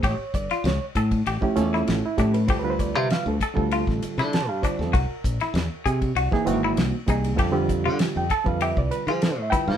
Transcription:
0.03 fingered electric bass A1, clean electric guitar G4, reed electric piano C#5, kick, ride
0.19 muted fingered electric bass stroke
0.34 fingered electric bass G1, reed electric piano D5, kick, hi-hat pedal, ride
0.51 clean electric guitar F4, snare, ride
0.64 fingered electric bass C#2, reed electric piano C#5, snare, ride
0.95 fingered electric bass A2, clean electric guitar A4, kick, hi-hat pedal, ride
1.11 kick, ride
1.26 fingered electric bass A1, clean electric guitar G4, ride
1.41 reed electric piano F3 A3 C#4 E4 G4, muted fingered electric bass stroke, kick
1.56 fingered electric bass E2, reed electric piano A3 C#4 E4 F4 A4, hi-hat pedal, ride
1.74 clean electric guitar E4, snare
1.88 fingered electric bass A1, snare, ride
2.05 reed electric piano E4
2.17 fingered electric bass A2, reed electric piano F3 A3 C#4 E4 G4 A4, clean electric guitar D4, kick, hi-hat pedal, ride
2.34 reed electric piano B4, ride
2.47 fingered electric bass D2, reed electric piano D3 G3 C4 F4 A4 C5, clean electric guitar G4, kick, ride
2.59 reed electric piano D3 C4 B4
2.63 reed electric piano G3 F4 B4
2.70 reed electric piano C5
2.79 reed electric piano D5, kick, hi-hat pedal, ride
2.95 fingered electric bass C3, clean electric guitar F4, reed electric piano E5
3.10 reed electric piano F5, snare, ride
3.26 fingered electric bass D2, reed electric piano A4
3.41 clean electric guitar A4, kick, hi-hat pedal, ride
3.54 fingered electric bass D2, reed electric piano D3 G3 C4 F4 A4, kick
3.71 clean electric guitar F4, ride
3.87 fingered electric bass A1, kick, snare
4.02 muted fingered electric bass stroke, hi-hat pedal, ride
4.18 fingered electric bass D3, clean electric guitar E4, snare, ride
4.33 reed electric piano A5, snare, ride
4.49 fingered electric bass G2, reed electric piano F5
4.62 reed electric piano D3 G3 C4 F4 C5 D5, clean electric guitar D4, muted fingered electric bass stroke, kick, hi-hat pedal, ride
4.79 fingered electric bass F2, reed electric piano A4, snare
4.93 fingered electric bass C2, clean electric guitar F#4, reed electric piano A#4, kick, ride
5.09 muted fingered electric bass stroke
5.24 fingered electric bass A#1, kick, hi-hat pedal, ride
5.40 clean electric guitar E4, snare, ride
5.54 fingered electric bass E2, snare, ride
5.86 fingered electric bass C3, clean electric guitar G#4, kick, hi-hat pedal, ride
6.02 kick, ride
6.15 fingered electric bass C2, clean electric guitar F#4, ride
6.31 reed electric piano E3 A#3 C4 D#4 G#4, kick, snare
6.45 fingered electric bass G#1, reed electric piano E3 A#3 C4 D#4 F#4, hi-hat pedal, ride
6.64 clean electric guitar E4
6.77 fingered electric bass C2, snare, ride
7.07 fingered electric bass C2, reed electric piano E3 A#3 C4 D#4 G#4, clean electric guitar D#4, kick, hi-hat pedal, ride
7.24 ride
7.36 fingered electric bass F2, reed electric piano D3 G3 C4 F4 A4, clean electric guitar G4, kick, ride
7.51 reed electric piano D3 G3 C4 F4 G4
7.69 kick, hi-hat pedal, ride
7.85 fingered electric bass D3, clean electric guitar F4
7.99 snare, ride
8.16 fingered electric bass F2, reed electric piano G5
8.30 clean electric guitar A4, reed electric piano A5, kick, hi-hat pedal, ride
8.44 fingered electric bass F2, reed electric piano D3 G3 C4 F4 B4 F5, kick
8.61 clean electric guitar G4, reed electric piano E5, ride
8.77 fingered electric bass C2, reed electric piano D5, kick
8.90 reed electric piano B4, muted fingered electric bass stroke, hi-hat pedal, ride
9.07 fingered electric bass F3, clean electric guitar F4, reed electric piano G#4, ride
9.22 reed electric piano A4, snare, ride
9.32 reed electric piano C5
9.37 fingered electric bass A2
9.42 reed electric piano E5
9.50 reed electric piano D3 G3 C4 F4 B4 G5, clean electric guitar E4, kick, hi-hat pedal, ride
9.68 fingered electric bass A2, reed electric piano F5, snare

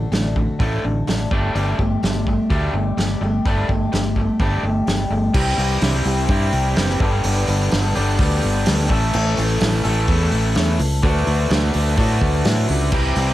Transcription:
Already playing: overdriven electric guitar D3, twelve-string acoustic guitar A3 D4 F#4
0.12 fingered electric bass A1, twelve-string acoustic guitar A2 D3 A3 D4 F#4, snare, open hi-hat
0.36 overdriven electric guitar A2 D3, twelve-string acoustic guitar A3 D4 F#4, kick
0.59 fingered electric bass A1, overdriven electric guitar A2, twelve-string acoustic guitar D3 A3 D4 F#4, kick, open hi-hat
0.85 fingered electric bass A1, overdriven electric guitar A2 D3
1.07 fingered electric bass A1, twelve-string acoustic guitar A2 D3 A3 D4 F#4, snare, open hi-hat
1.31 fingered electric bass G1, overdriven electric guitar G3, twelve-string acoustic guitar A3 D4 G4, kick
1.55 fingered electric bass G1, twelve-string acoustic guitar G3 A3 D4 G4, open hi-hat
1.79 fingered electric bass G1, overdriven electric guitar G3, twelve-string acoustic guitar A3 D4 G4, kick
2.03 fingered electric bass G1, twelve-string acoustic guitar G3 A3 D4 G4, snare, open hi-hat
2.26 overdriven electric guitar G3, twelve-string acoustic guitar A3 D4 G4, kick
2.50 fingered electric bass D2, twelve-string acoustic guitar G3 A3 D4 G4, kick, open hi-hat
2.73 fingered electric bass G1, overdriven electric guitar G3 A3
2.97 fingered electric bass G1, twelve-string acoustic guitar G3 A3 D4 G4, snare, open hi-hat
3.21 fingered electric bass G1, overdriven electric guitar G3, twelve-string acoustic guitar A3 D4 G4
3.46 fingered electric bass G1, twelve-string acoustic guitar G3 A3 D4 G4, kick, open hi-hat
3.68 fingered electric bass G1, overdriven electric guitar G3, twelve-string acoustic guitar A3 D4 G4, kick
3.92 fingered electric bass G1, twelve-string acoustic guitar G3 A3 D4 G4, snare, open hi-hat
4.16 overdriven electric guitar G3, twelve-string acoustic guitar A3 D4 G4, kick
4.39 fingered electric bass G1, twelve-string acoustic guitar G3 A3 D4 G4, kick, open hi-hat
4.63 fingered electric bass G1, overdriven electric guitar G3 A3
4.87 fingered electric bass G1, twelve-string acoustic guitar G3 A3 D4 G4, snare, open hi-hat
5.10 fingered electric bass G1, overdriven electric guitar G3, twelve-string acoustic guitar A3 D4 G4
5.34 fingered electric bass C2, twelve-string acoustic guitar C3 E3 G3 E4 G4, overdriven electric guitar C4, kick, crash
5.58 fingered electric bass C2, open hi-hat
5.81 fingered electric bass C2, twelve-string acoustic guitar E3 G3 E4 G4, snare, open hi-hat
6.05 fingered electric bass C2, twelve-string acoustic guitar G3 E4 G4, open hi-hat
6.28 fingered electric bass G2, twelve-string acoustic guitar C3 E3 G3 E4 G4, overdriven electric guitar C4, kick, open hi-hat
6.53 fingered electric bass C2, open hi-hat
6.76 fingered electric bass F#1, twelve-string acoustic guitar E3 G3 E4 G4, snare, open hi-hat
6.89 snare
7.00 fingered electric bass G1, overdriven electric guitar G2 D3 G4, twelve-string acoustic guitar G3 B3 D4 A4, kick
7.24 fingered electric bass G1, open hi-hat
7.48 fingered electric bass G1, open hi-hat
7.71 fingered electric bass G1, twelve-string acoustic guitar G3 B3 D4 A4, snare, open hi-hat
7.95 fingered electric bass G1, overdriven electric guitar G2 D3 G3 G4, twelve-string acoustic guitar B3 D4 A4, open hi-hat
8.19 fingered electric bass D2, twelve-string acoustic guitar G3 B3 D4 A4, kick, open hi-hat
8.42 fingered electric bass G1, open hi-hat
8.66 fingered electric bass D2, twelve-string acoustic guitar G3 B3 D4 A4, snare, open hi-hat
8.89 fingered electric bass A1, overdriven electric guitar A2 E3, twelve-string acoustic guitar C#4 A4, kick, open hi-hat
8.93 twelve-string acoustic guitar A3
9.13 fingered electric bass A1, twelve-string acoustic guitar A2 E3 A3 C#4 A4, crash
9.37 fingered electric bass A1, open hi-hat
9.60 fingered electric bass A1, twelve-string acoustic guitar E3 A3 C#4 A4, snare, open hi-hat
9.84 fingered electric bass A1, overdriven electric guitar A2 E3, twelve-string acoustic guitar A3 C#4 A4, open hi-hat
10.08 fingered electric bass E2, twelve-string acoustic guitar A2 E3 A3 C#4 A4, kick, open hi-hat
10.31 fingered electric bass A1, open hi-hat
10.55 fingered electric bass E2, twelve-string acoustic guitar E3 A3 C#4 A4, snare, open hi-hat
10.79 fingered electric bass C#2, twelve-string acoustic guitar A3 C#4 A4, open hi-hat
11.03 fingered electric bass D2, twelve-string acoustic guitar D3 F#3 A3 B3 F#4, overdriven electric guitar D4, kick, open hi-hat
11.27 fingered electric bass D2, open hi-hat
11.50 fingered electric bass D2, twelve-string acoustic guitar F#3 A3 B3 F#4, snare, open hi-hat
11.73 fingered electric bass D2, twelve-string acoustic guitar A3 B3 F#4, open hi-hat
11.97 fingered electric bass A2, twelve-string acoustic guitar D3 F#3 A3 B3 F#4, overdriven electric guitar D4, kick, open hi-hat
12.21 fingered electric bass D2, kick, open hi-hat
12.44 fingered electric bass A2, twelve-string acoustic guitar F#3 A3 B3 F#4, snare, open hi-hat
12.68 fingered electric bass C#2, twelve-string acoustic guitar A3 B3 F#4, open hi-hat
12.92 fingered electric bass C2, twelve-string acoustic guitar C3 E3 G3 E4 G4, overdriven electric guitar C4, kick, crash
13.15 fingered electric bass C2, open hi-hat

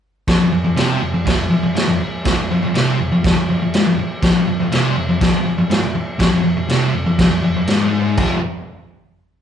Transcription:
0.28 distorted electric guitar F2, kick, snare, crash
0.40 distorted electric guitar F2
0.52 distorted electric guitar F2
0.65 distorted electric guitar F2
0.75 distorted electric guitar C3, snare, crash
1.02 distorted electric guitar F2
1.14 distorted electric guitar F2
1.25 distorted electric guitar F2, kick, snare, crash
1.38 distorted electric guitar F2
1.50 distorted electric guitar F2
1.63 distorted electric guitar F2
1.75 distorted electric guitar G#2, snare, crash
1.88 distorted electric guitar F2
2.01 muted distorted electric guitar stroke
2.25 distorted electric guitar F2, kick, snare, crash
2.38 distorted electric guitar F2
2.51 distorted electric guitar F2
2.63 distorted electric guitar F2
2.74 distorted electric guitar C3, snare, crash
2.99 distorted electric guitar F2
3.12 distorted electric guitar F2
3.24 distorted electric guitar F2, kick, snare, crash
3.36 distorted electric guitar F2
3.49 distorted electric guitar F2
3.62 distorted electric guitar F2
3.74 distorted electric guitar G#2, snare, crash
3.87 distorted electric guitar F2
3.98 muted distorted electric guitar stroke
4.22 distorted electric guitar F2, kick, snare, crash
4.34 distorted electric guitar F2
4.47 distorted electric guitar F2
4.60 distorted electric guitar F2
4.72 distorted electric guitar C3, snare, crash
4.96 distorted electric guitar F2
5.09 distorted electric guitar F2
5.21 distorted electric guitar F2, kick, snare, crash
5.34 distorted electric guitar F2
5.45 distorted electric guitar F2
5.58 distorted electric guitar F2
5.70 distorted electric guitar G#2, snare, crash
5.83 distorted electric guitar F2
5.95 muted distorted electric guitar stroke
6.19 distorted electric guitar F2, kick, snare, crash
6.32 distorted electric guitar F2
6.44 distorted electric guitar F2
6.57 distorted electric guitar F2
6.69 distorted electric guitar C3, snare, crash
6.93 distorted electric guitar F2
7.06 distorted electric guitar F2
7.19 distorted electric guitar F2, kick, snare, crash
7.31 distorted electric guitar F2
7.43 distorted electric guitar F2
7.56 distorted electric guitar F2
7.67 distorted electric guitar G#2, snare, crash
8.17 distorted electric guitar F2 C3 F3, kick, floor tom, crash

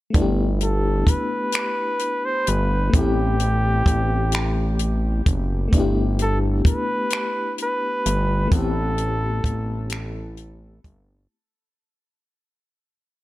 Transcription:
0.10 fm electric piano A3 B3
0.14 analog synth bass G1, fm electric piano D4, kick, closed hi-hat
0.18 fm electric piano E4 G4
0.61 flugelhorn A4, closed hi-hat
1.07 analog synth bass G1, flugelhorn B4, kick, closed hi-hat
1.52 finger snap, closed hi-hat
1.99 closed hi-hat
2.25 flugelhorn C5
2.47 analog synth bass G1, flugelhorn B4, closed hi-hat
2.90 fm electric piano A3 B3, kick
2.94 analog synth bass A1, fm electric piano C4 E4, flugelhorn G4, closed hi-hat
3.01 fm electric piano G4
3.40 closed hi-hat
3.86 analog synth bass A1, kick, closed hi-hat
4.32 finger snap, closed hi-hat
4.79 closed hi-hat
5.26 analog synth bass F#1, kick, closed hi-hat
5.68 fm electric piano A3 B3
5.73 analog synth bass G1, fm electric piano D4 E4, kick, closed hi-hat
5.79 fm electric piano G4
6.19 flugelhorn A4, closed hi-hat
6.65 analog synth bass G1, flugelhorn B4, kick, closed hi-hat
7.10 finger snap, closed hi-hat
7.58 closed hi-hat
7.62 flugelhorn B4
8.06 analog synth bass G1, closed hi-hat
8.47 fm electric piano A3 B3
8.52 analog synth bass A1, fm electric piano C4, flugelhorn A4, kick, closed hi-hat
8.56 fm electric piano E4 G4
8.98 closed hi-hat
9.44 analog synth bass A1, kick, closed hi-hat
9.90 finger snap, closed hi-hat
10.37 closed hi-hat
10.84 analog synth bass G1, kick, closed hi-hat

